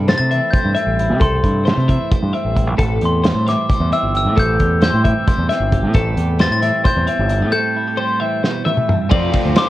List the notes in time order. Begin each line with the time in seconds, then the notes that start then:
Already playing: G2 C3 C4 E4
0.08 A3 C5 A6, snare, closed hi-hat
0.18 C3 A6
0.31 E3 C4 E5, closed hi-hat
0.50 C5 G6, kick, closed hi-hat
0.55 A3
0.65 G2
0.75 G2 C4 E5, closed hi-hat
0.87 A1
0.99 E4, closed hi-hat
1.10 C3
1.20 C2 C3 C4 A4 C6, kick, closed hi-hat
1.44 G2 E4, kick, closed hi-hat
1.65 A3 C5, snare, closed hi-hat
1.77 C3
1.88 E3 C4 E5, kick, closed hi-hat
2.11 A3 C5, kick, closed hi-hat
2.23 G2
2.33 G2 C4 E5, closed hi-hat
2.45 A1
2.55 E4, kick, closed hi-hat
2.67 A#1
2.77 A1 A2 C4 A4, kick, closed hi-hat
3.01 E2 G4, closed hi-hat
3.05 C6
3.24 G3 C5, snare, closed hi-hat
3.35 A2
3.47 E3 C4 E5 D6, snare, closed hi-hat
3.69 G3 C5, kick, closed hi-hat
3.80 E2
3.91 E2 C4 E5 E6, closed hi-hat
4.03 G1
4.15 G4 E6, closed hi-hat
4.25 A2
4.35 A1 A2 C4 A4 G6, kick, closed hi-hat
4.59 E2 G4, kick, closed hi-hat
4.81 G3 C5 G6, snare, closed hi-hat
4.94 A2
5.04 E3 C4 E5, kick, closed hi-hat
5.27 G3 C5, kick, closed hi-hat
5.38 E2
5.49 E2 C4 E5, snare, closed hi-hat
5.60 G1
5.72 G4, kick, closed hi-hat
5.83 A2
5.94 A1 A2 C4 A4, kick, closed hi-hat
6.17 E2 G4, closed hi-hat
6.39 G3 C5 A6, snare, closed hi-hat
6.50 A2 A6
6.62 E3 C4 E5, closed hi-hat
6.84 G3 C5 G6, kick, closed hi-hat
6.97 E2
7.07 E2 C4 E5, closed hi-hat
7.19 G1
7.30 E4, closed hi-hat
7.41 A2 G4
7.52 A2 C4 A4 G6
7.77 E4
7.88 G4
7.97 G3 C5
8.20 E3 C4 E5
8.43 B2 C5, snare
8.65 A2 E5, high tom
8.77 mid tom
8.88 G2, mid tom
9.10 F2 F3 A3 C4 F4 D5, kick, ride
9.32 A3 C4 F4, kick, ride
9.45 D2
9.55 F3 A3 C4 F4 C5 D6, snare, ride